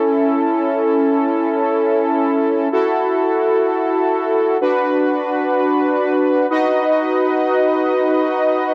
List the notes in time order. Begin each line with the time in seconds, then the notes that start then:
Already playing: C#4 E4 A4
2.72 E4 F#4 A4
4.61 D4 F#4 B4
6.50 D#4 F#4 B4 D#5